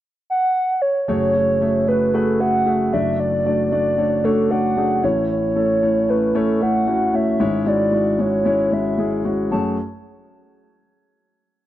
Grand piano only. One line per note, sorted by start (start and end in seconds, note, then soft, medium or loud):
1.08 2.89 F#1 soft
1.08 2.89 F#2 soft
1.08 1.29 A3 medium
1.08 1.29 F#4 medium
1.08 1.30 G#4 medium
1.08 1.30 C#5 medium
1.35 1.56 A3 medium
1.35 1.56 F#4 soft
1.35 1.56 G#4 soft
1.35 1.56 C#5 medium
1.61 1.82 A3 medium
1.61 1.82 F#4 medium
1.61 1.83 G#4 medium
1.61 1.83 E5 medium
1.87 2.08 A3 medium
1.87 2.09 F#4 medium
1.87 2.09 G#4 medium
1.87 2.09 B4 medium
2.14 2.35 A3 medium
2.14 2.35 F#4 medium
2.14 2.35 G#4 medium
2.14 2.35 B4 medium
2.40 2.61 A3 medium
2.40 2.61 F#4 medium
2.40 2.61 G#4 medium
2.40 2.62 E5 medium
2.66 2.87 A3 medium
2.66 2.87 F#4 medium
2.66 2.87 G#4 medium
2.66 2.88 E5 medium
2.93 5.00 F#1 medium
2.93 5.00 F#2 soft
2.93 3.36 A3 medium
2.93 3.36 D4 medium
2.93 3.36 F#4 medium
2.93 3.37 D5 medium
3.45 3.66 A3 medium
3.45 3.67 D4 soft
3.45 3.67 F#4 soft
3.45 3.67 D5 medium
3.72 3.93 A3 medium
3.72 3.93 D4 medium
3.72 3.93 F#4 medium
3.72 3.93 D5 medium
3.98 4.19 A3 medium
3.98 4.19 D4 medium
3.98 4.19 F#4 medium
3.98 4.19 C#5 medium
4.24 4.45 A3 medium
4.24 4.45 D4 medium
4.24 4.45 F#4 medium
4.24 4.46 C#5 medium
4.50 4.72 A3 medium
4.50 4.72 D4 medium
4.50 4.72 F#4 medium
4.50 4.72 D5 medium
4.77 4.98 A3 medium
4.77 4.98 D4 medium
4.77 4.98 F#4 medium
4.77 4.98 G#4 medium
5.03 7.10 A1 medium
5.03 7.10 A2 medium
5.03 5.47 A3 medium
5.03 5.47 C#4 medium
5.03 5.47 E4 medium
5.03 5.47 C#5 medium
5.56 5.77 A3 medium
5.56 5.77 C#4 soft
5.56 5.77 E4 medium
5.56 5.77 A4 medium
5.82 6.03 A3 medium
5.82 6.04 C#4 medium
5.82 6.04 E4 medium
5.82 6.04 C#5 medium
6.09 6.30 A3 medium
6.09 6.30 C#4 medium
6.09 6.30 E4 medium
6.09 6.30 C#5 medium
6.35 6.56 A3 medium
6.35 6.56 C#4 medium
6.35 6.56 E4 medium
6.35 6.56 C#5 medium
6.61 6.82 A3 medium
6.61 6.82 C#4 medium
6.61 6.82 E4 medium
6.61 6.83 E5 medium
6.87 7.08 A3 medium
6.87 7.08 C#4 medium
6.87 7.09 E4 medium
6.87 7.09 F#4 medium
7.13 7.35 A3 medium
7.13 7.35 C#4 medium
7.13 7.35 E4 medium
7.13 7.35 C#5 medium
7.40 9.47 G#1 soft
7.40 9.47 G#2 medium
7.40 7.61 G#3 medium
7.40 7.61 C#4 medium
7.40 7.61 E4 medium
7.40 7.62 C#5 medium
7.66 7.87 G#3 medium
7.66 7.88 C#4 medium
7.66 7.88 E4 medium
7.66 7.88 F#4 medium
7.92 8.14 G#3 medium
7.92 8.14 C#4 medium
7.92 8.14 E4 medium
7.92 8.14 F#4 medium
8.19 8.40 G#3 medium
8.19 8.40 C#4 medium
8.19 8.41 E4 soft
8.19 8.41 F#4 medium
8.45 8.66 G#3 medium
8.45 8.67 C#4 medium
8.45 8.67 E4 medium
8.45 8.67 C#5 medium
8.72 8.93 G#3 medium
8.72 8.93 C#4 medium
8.72 8.93 E4 soft
8.72 8.93 F#4 medium
8.98 9.19 G#3 medium
8.98 9.19 C#4 medium
8.98 9.20 E4 medium
8.98 9.20 G#4 medium
9.25 9.46 G#3 medium
9.25 9.46 C#4 medium
9.25 9.46 E4 soft
9.25 9.46 F#4 medium
9.52 9.76 F#2 medium
9.52 9.76 A3 medium
9.52 9.76 F#4 medium
9.52 9.76 G#4 medium
9.52 9.76 C#5 medium